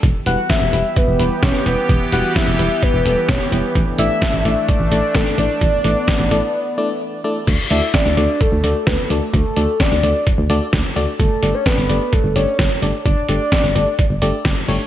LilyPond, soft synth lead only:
\new Staff \with { instrumentName = "Soft synth lead" } { \time 4/4 \key d \major \tempo 4 = 129 r8 fis''8 e''4 b'4 cis''8 b'8 | r8 fis''8 e''4 b'4 cis''8 b'8 | r8 e''4. d''4 a'8 d''8~ | d''2.~ d''8 r8 |
r8 e''8 d''4 a'4 b'8 a'8 | a'4 d''4 r2 | a'8. cis''16 b'4 a'8 cis''4 r8 | d''8 d''4. r2 | }